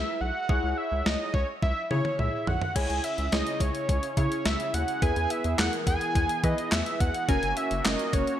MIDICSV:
0, 0, Header, 1, 6, 480
1, 0, Start_track
1, 0, Tempo, 566038
1, 418, Time_signature, 4, 2, 24, 8
1, 7122, End_track
2, 0, Start_track
2, 0, Title_t, "Analog synth lead"
2, 0, Program_c, 0, 81
2, 0, Note_on_c, 0, 76, 105
2, 178, Note_on_c, 0, 78, 105
2, 191, Note_off_c, 0, 76, 0
2, 657, Note_on_c, 0, 76, 96
2, 670, Note_off_c, 0, 78, 0
2, 898, Note_on_c, 0, 75, 96
2, 911, Note_off_c, 0, 76, 0
2, 1134, Note_off_c, 0, 75, 0
2, 1139, Note_on_c, 0, 73, 83
2, 1246, Note_off_c, 0, 73, 0
2, 1378, Note_on_c, 0, 76, 92
2, 1601, Note_off_c, 0, 76, 0
2, 1618, Note_on_c, 0, 73, 83
2, 1859, Note_on_c, 0, 76, 89
2, 1871, Note_off_c, 0, 73, 0
2, 2099, Note_on_c, 0, 78, 87
2, 2112, Note_off_c, 0, 76, 0
2, 2339, Note_on_c, 0, 80, 101
2, 2352, Note_off_c, 0, 78, 0
2, 2578, Note_on_c, 0, 76, 93
2, 2591, Note_off_c, 0, 80, 0
2, 2814, Note_off_c, 0, 76, 0
2, 2820, Note_on_c, 0, 75, 88
2, 3061, Note_on_c, 0, 73, 94
2, 3074, Note_off_c, 0, 75, 0
2, 3535, Note_off_c, 0, 73, 0
2, 3540, Note_on_c, 0, 73, 84
2, 3780, Note_on_c, 0, 76, 94
2, 3792, Note_off_c, 0, 73, 0
2, 4019, Note_on_c, 0, 78, 93
2, 4032, Note_off_c, 0, 76, 0
2, 4258, Note_on_c, 0, 80, 107
2, 4271, Note_off_c, 0, 78, 0
2, 4499, Note_on_c, 0, 76, 93
2, 4512, Note_off_c, 0, 80, 0
2, 4734, Note_off_c, 0, 76, 0
2, 4739, Note_on_c, 0, 78, 98
2, 4847, Note_off_c, 0, 78, 0
2, 4979, Note_on_c, 0, 80, 110
2, 5459, Note_on_c, 0, 75, 92
2, 5472, Note_off_c, 0, 80, 0
2, 5698, Note_on_c, 0, 76, 97
2, 5711, Note_off_c, 0, 75, 0
2, 5939, Note_on_c, 0, 78, 98
2, 5952, Note_off_c, 0, 76, 0
2, 6173, Note_off_c, 0, 78, 0
2, 6178, Note_on_c, 0, 80, 109
2, 6418, Note_on_c, 0, 76, 97
2, 6431, Note_off_c, 0, 80, 0
2, 6658, Note_on_c, 0, 75, 97
2, 6671, Note_off_c, 0, 76, 0
2, 6897, Note_on_c, 0, 73, 97
2, 6910, Note_off_c, 0, 75, 0
2, 7122, Note_off_c, 0, 73, 0
2, 7122, End_track
3, 0, Start_track
3, 0, Title_t, "Analog polysynth"
3, 0, Program_c, 1, 90
3, 0, Note_on_c, 1, 64, 75
3, 0, Note_on_c, 1, 68, 70
3, 0, Note_on_c, 1, 71, 80
3, 253, Note_off_c, 1, 64, 0
3, 253, Note_off_c, 1, 68, 0
3, 253, Note_off_c, 1, 71, 0
3, 418, Note_on_c, 1, 64, 74
3, 418, Note_on_c, 1, 68, 71
3, 418, Note_on_c, 1, 73, 81
3, 1158, Note_off_c, 1, 64, 0
3, 1158, Note_off_c, 1, 68, 0
3, 1158, Note_off_c, 1, 73, 0
3, 1618, Note_on_c, 1, 64, 75
3, 1618, Note_on_c, 1, 68, 67
3, 1618, Note_on_c, 1, 73, 81
3, 2173, Note_off_c, 1, 64, 0
3, 2173, Note_off_c, 1, 68, 0
3, 2173, Note_off_c, 1, 73, 0
3, 2338, Note_on_c, 1, 64, 73
3, 2338, Note_on_c, 1, 68, 66
3, 2338, Note_on_c, 1, 73, 81
3, 2708, Note_off_c, 1, 64, 0
3, 2708, Note_off_c, 1, 68, 0
3, 2708, Note_off_c, 1, 73, 0
3, 2818, Note_on_c, 1, 64, 77
3, 2818, Note_on_c, 1, 68, 72
3, 2818, Note_on_c, 1, 73, 84
3, 3373, Note_off_c, 1, 64, 0
3, 3373, Note_off_c, 1, 68, 0
3, 3373, Note_off_c, 1, 73, 0
3, 3538, Note_on_c, 1, 64, 72
3, 3538, Note_on_c, 1, 68, 64
3, 3539, Note_on_c, 1, 73, 78
3, 4093, Note_off_c, 1, 64, 0
3, 4093, Note_off_c, 1, 68, 0
3, 4093, Note_off_c, 1, 73, 0
3, 4258, Note_on_c, 1, 64, 74
3, 4258, Note_on_c, 1, 68, 68
3, 4259, Note_on_c, 1, 71, 84
3, 4628, Note_off_c, 1, 64, 0
3, 4628, Note_off_c, 1, 68, 0
3, 4628, Note_off_c, 1, 71, 0
3, 4738, Note_on_c, 1, 64, 77
3, 4738, Note_on_c, 1, 68, 72
3, 4738, Note_on_c, 1, 70, 84
3, 5293, Note_off_c, 1, 64, 0
3, 5293, Note_off_c, 1, 68, 0
3, 5293, Note_off_c, 1, 70, 0
3, 5458, Note_on_c, 1, 64, 71
3, 5458, Note_on_c, 1, 68, 63
3, 5458, Note_on_c, 1, 71, 78
3, 6013, Note_off_c, 1, 64, 0
3, 6013, Note_off_c, 1, 68, 0
3, 6013, Note_off_c, 1, 71, 0
3, 6178, Note_on_c, 1, 61, 76
3, 6179, Note_on_c, 1, 66, 69
3, 6179, Note_on_c, 1, 70, 85
3, 6548, Note_off_c, 1, 61, 0
3, 6548, Note_off_c, 1, 66, 0
3, 6548, Note_off_c, 1, 70, 0
3, 6659, Note_on_c, 1, 61, 76
3, 6659, Note_on_c, 1, 66, 73
3, 6659, Note_on_c, 1, 70, 85
3, 7122, Note_off_c, 1, 61, 0
3, 7122, Note_off_c, 1, 66, 0
3, 7122, Note_off_c, 1, 70, 0
3, 7122, End_track
4, 0, Start_track
4, 0, Title_t, "Analog synth pad"
4, 0, Program_c, 2, 89
4, 2338, Note_on_c, 2, 49, 79
4, 2338, Note_on_c, 2, 61, 72
4, 2338, Note_on_c, 2, 64, 72
4, 2338, Note_on_c, 2, 68, 86
4, 4239, Note_off_c, 2, 49, 0
4, 4239, Note_off_c, 2, 61, 0
4, 4257, Note_on_c, 2, 52, 77
4, 4257, Note_on_c, 2, 59, 88
4, 6144, Note_off_c, 2, 64, 0
4, 6144, Note_off_c, 2, 68, 0
4, 6158, Note_off_c, 2, 52, 0
4, 6158, Note_off_c, 2, 59, 0
4, 6178, Note_on_c, 2, 58, 81
4, 6178, Note_on_c, 2, 61, 72
4, 6178, Note_on_c, 2, 66, 92
4, 7122, Note_off_c, 2, 58, 0
4, 7122, Note_off_c, 2, 61, 0
4, 7122, Note_off_c, 2, 66, 0
4, 7122, End_track
5, 0, Start_track
5, 0, Title_t, "Analog synth bass"
5, 0, Program_c, 3, 38
5, 177, Note_on_c, 3, 35, 97
5, 266, Note_off_c, 3, 35, 0
5, 417, Note_on_c, 3, 37, 99
5, 506, Note_off_c, 3, 37, 0
5, 538, Note_on_c, 3, 37, 94
5, 626, Note_off_c, 3, 37, 0
5, 777, Note_on_c, 3, 37, 99
5, 866, Note_off_c, 3, 37, 0
5, 898, Note_on_c, 3, 37, 106
5, 986, Note_off_c, 3, 37, 0
5, 1135, Note_on_c, 3, 37, 104
5, 1225, Note_off_c, 3, 37, 0
5, 1378, Note_on_c, 3, 37, 109
5, 1466, Note_off_c, 3, 37, 0
5, 1617, Note_on_c, 3, 49, 108
5, 1706, Note_off_c, 3, 49, 0
5, 1858, Note_on_c, 3, 37, 98
5, 1946, Note_off_c, 3, 37, 0
5, 2098, Note_on_c, 3, 35, 96
5, 2186, Note_off_c, 3, 35, 0
5, 2338, Note_on_c, 3, 37, 109
5, 2426, Note_off_c, 3, 37, 0
5, 2458, Note_on_c, 3, 37, 95
5, 2546, Note_off_c, 3, 37, 0
5, 2698, Note_on_c, 3, 37, 93
5, 2787, Note_off_c, 3, 37, 0
5, 2818, Note_on_c, 3, 37, 102
5, 2907, Note_off_c, 3, 37, 0
5, 3056, Note_on_c, 3, 37, 101
5, 3145, Note_off_c, 3, 37, 0
5, 3298, Note_on_c, 3, 37, 104
5, 3387, Note_off_c, 3, 37, 0
5, 3537, Note_on_c, 3, 49, 107
5, 3626, Note_off_c, 3, 49, 0
5, 3779, Note_on_c, 3, 37, 99
5, 3867, Note_off_c, 3, 37, 0
5, 4018, Note_on_c, 3, 39, 93
5, 4106, Note_off_c, 3, 39, 0
5, 4258, Note_on_c, 3, 40, 106
5, 4347, Note_off_c, 3, 40, 0
5, 4378, Note_on_c, 3, 40, 97
5, 4466, Note_off_c, 3, 40, 0
5, 4618, Note_on_c, 3, 40, 100
5, 4706, Note_off_c, 3, 40, 0
5, 4738, Note_on_c, 3, 40, 102
5, 4826, Note_off_c, 3, 40, 0
5, 4975, Note_on_c, 3, 40, 93
5, 5065, Note_off_c, 3, 40, 0
5, 5219, Note_on_c, 3, 40, 107
5, 5307, Note_off_c, 3, 40, 0
5, 5458, Note_on_c, 3, 52, 111
5, 5546, Note_off_c, 3, 52, 0
5, 5698, Note_on_c, 3, 40, 107
5, 5786, Note_off_c, 3, 40, 0
5, 5940, Note_on_c, 3, 40, 93
5, 6028, Note_off_c, 3, 40, 0
5, 6179, Note_on_c, 3, 30, 97
5, 6267, Note_off_c, 3, 30, 0
5, 6298, Note_on_c, 3, 30, 107
5, 6386, Note_off_c, 3, 30, 0
5, 6539, Note_on_c, 3, 30, 100
5, 6627, Note_off_c, 3, 30, 0
5, 6659, Note_on_c, 3, 30, 107
5, 6747, Note_off_c, 3, 30, 0
5, 6896, Note_on_c, 3, 30, 101
5, 6985, Note_off_c, 3, 30, 0
5, 7122, End_track
6, 0, Start_track
6, 0, Title_t, "Drums"
6, 418, Note_on_c, 9, 36, 114
6, 502, Note_off_c, 9, 36, 0
6, 900, Note_on_c, 9, 38, 122
6, 985, Note_off_c, 9, 38, 0
6, 1135, Note_on_c, 9, 36, 92
6, 1220, Note_off_c, 9, 36, 0
6, 1378, Note_on_c, 9, 36, 93
6, 1378, Note_on_c, 9, 48, 54
6, 1462, Note_off_c, 9, 48, 0
6, 1463, Note_off_c, 9, 36, 0
6, 1617, Note_on_c, 9, 47, 71
6, 1702, Note_off_c, 9, 47, 0
6, 1737, Note_on_c, 9, 47, 64
6, 1822, Note_off_c, 9, 47, 0
6, 1858, Note_on_c, 9, 45, 85
6, 1942, Note_off_c, 9, 45, 0
6, 2098, Note_on_c, 9, 43, 97
6, 2182, Note_off_c, 9, 43, 0
6, 2218, Note_on_c, 9, 43, 86
6, 2303, Note_off_c, 9, 43, 0
6, 2338, Note_on_c, 9, 36, 115
6, 2338, Note_on_c, 9, 49, 94
6, 2339, Note_on_c, 9, 42, 69
6, 2423, Note_off_c, 9, 36, 0
6, 2423, Note_off_c, 9, 42, 0
6, 2423, Note_off_c, 9, 49, 0
6, 2458, Note_on_c, 9, 42, 46
6, 2543, Note_off_c, 9, 42, 0
6, 2577, Note_on_c, 9, 42, 78
6, 2662, Note_off_c, 9, 42, 0
6, 2697, Note_on_c, 9, 42, 49
6, 2781, Note_off_c, 9, 42, 0
6, 2818, Note_on_c, 9, 42, 73
6, 2821, Note_on_c, 9, 38, 122
6, 2903, Note_off_c, 9, 42, 0
6, 2906, Note_off_c, 9, 38, 0
6, 2939, Note_on_c, 9, 42, 58
6, 3024, Note_off_c, 9, 42, 0
6, 3056, Note_on_c, 9, 36, 93
6, 3058, Note_on_c, 9, 42, 78
6, 3140, Note_off_c, 9, 36, 0
6, 3143, Note_off_c, 9, 42, 0
6, 3176, Note_on_c, 9, 42, 51
6, 3261, Note_off_c, 9, 42, 0
6, 3298, Note_on_c, 9, 36, 95
6, 3299, Note_on_c, 9, 42, 70
6, 3383, Note_off_c, 9, 36, 0
6, 3384, Note_off_c, 9, 42, 0
6, 3417, Note_on_c, 9, 42, 58
6, 3502, Note_off_c, 9, 42, 0
6, 3537, Note_on_c, 9, 42, 72
6, 3538, Note_on_c, 9, 36, 93
6, 3622, Note_off_c, 9, 36, 0
6, 3622, Note_off_c, 9, 42, 0
6, 3661, Note_on_c, 9, 42, 54
6, 3746, Note_off_c, 9, 42, 0
6, 3777, Note_on_c, 9, 42, 80
6, 3779, Note_on_c, 9, 38, 108
6, 3862, Note_off_c, 9, 42, 0
6, 3863, Note_off_c, 9, 38, 0
6, 3899, Note_on_c, 9, 42, 53
6, 3984, Note_off_c, 9, 42, 0
6, 4020, Note_on_c, 9, 42, 80
6, 4104, Note_off_c, 9, 42, 0
6, 4138, Note_on_c, 9, 42, 53
6, 4223, Note_off_c, 9, 42, 0
6, 4258, Note_on_c, 9, 36, 119
6, 4258, Note_on_c, 9, 42, 72
6, 4343, Note_off_c, 9, 36, 0
6, 4343, Note_off_c, 9, 42, 0
6, 4378, Note_on_c, 9, 42, 47
6, 4463, Note_off_c, 9, 42, 0
6, 4497, Note_on_c, 9, 42, 76
6, 4581, Note_off_c, 9, 42, 0
6, 4616, Note_on_c, 9, 42, 49
6, 4701, Note_off_c, 9, 42, 0
6, 4738, Note_on_c, 9, 42, 70
6, 4741, Note_on_c, 9, 38, 120
6, 4741, Note_on_c, 9, 39, 105
6, 4822, Note_off_c, 9, 42, 0
6, 4826, Note_off_c, 9, 38, 0
6, 4826, Note_off_c, 9, 39, 0
6, 4859, Note_on_c, 9, 42, 56
6, 4943, Note_off_c, 9, 42, 0
6, 4976, Note_on_c, 9, 36, 96
6, 4977, Note_on_c, 9, 42, 83
6, 5061, Note_off_c, 9, 36, 0
6, 5062, Note_off_c, 9, 42, 0
6, 5097, Note_on_c, 9, 42, 50
6, 5182, Note_off_c, 9, 42, 0
6, 5219, Note_on_c, 9, 36, 97
6, 5219, Note_on_c, 9, 42, 72
6, 5303, Note_off_c, 9, 36, 0
6, 5304, Note_off_c, 9, 42, 0
6, 5337, Note_on_c, 9, 42, 60
6, 5422, Note_off_c, 9, 42, 0
6, 5457, Note_on_c, 9, 42, 72
6, 5458, Note_on_c, 9, 36, 92
6, 5542, Note_off_c, 9, 42, 0
6, 5543, Note_off_c, 9, 36, 0
6, 5581, Note_on_c, 9, 42, 55
6, 5666, Note_off_c, 9, 42, 0
6, 5697, Note_on_c, 9, 42, 82
6, 5698, Note_on_c, 9, 38, 107
6, 5698, Note_on_c, 9, 39, 92
6, 5782, Note_off_c, 9, 42, 0
6, 5783, Note_off_c, 9, 38, 0
6, 5783, Note_off_c, 9, 39, 0
6, 5819, Note_on_c, 9, 42, 53
6, 5904, Note_off_c, 9, 42, 0
6, 5940, Note_on_c, 9, 36, 95
6, 5940, Note_on_c, 9, 42, 78
6, 6025, Note_off_c, 9, 36, 0
6, 6025, Note_off_c, 9, 42, 0
6, 6058, Note_on_c, 9, 42, 55
6, 6143, Note_off_c, 9, 42, 0
6, 6179, Note_on_c, 9, 36, 116
6, 6179, Note_on_c, 9, 42, 74
6, 6263, Note_off_c, 9, 36, 0
6, 6263, Note_off_c, 9, 42, 0
6, 6298, Note_on_c, 9, 42, 46
6, 6383, Note_off_c, 9, 42, 0
6, 6417, Note_on_c, 9, 42, 77
6, 6502, Note_off_c, 9, 42, 0
6, 6537, Note_on_c, 9, 42, 50
6, 6622, Note_off_c, 9, 42, 0
6, 6657, Note_on_c, 9, 42, 74
6, 6661, Note_on_c, 9, 38, 127
6, 6661, Note_on_c, 9, 39, 106
6, 6742, Note_off_c, 9, 42, 0
6, 6746, Note_off_c, 9, 38, 0
6, 6746, Note_off_c, 9, 39, 0
6, 6778, Note_on_c, 9, 42, 57
6, 6863, Note_off_c, 9, 42, 0
6, 6896, Note_on_c, 9, 36, 96
6, 6897, Note_on_c, 9, 42, 81
6, 6981, Note_off_c, 9, 36, 0
6, 6982, Note_off_c, 9, 42, 0
6, 7016, Note_on_c, 9, 42, 50
6, 7101, Note_off_c, 9, 42, 0
6, 7122, End_track
0, 0, End_of_file